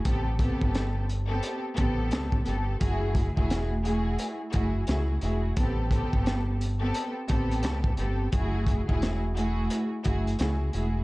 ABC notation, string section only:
X:1
M:4/4
L:1/16
Q:"Swing 16ths" 1/4=87
K:F#m
V:1 name="String section"
[B,=C=GA]2 [B,CGA]4 z [B,CGA]2 z [B,CGA]4 [B,CGA]2 | [A,EFG]3 [A,EFG]2 z [A,EFG]3 z [A,EFG]2 [A,EFG]2 [A,EFG]2 | [B,=C=GA]2 [B,CGA]4 z [B,CGA]2 z [B,CGA]4 [B,CGA]2 | [A,EFG]3 [A,EFG]2 z [A,EFG]3 z [A,EFG]2 [A,EFG]2 [A,EFG]2 |]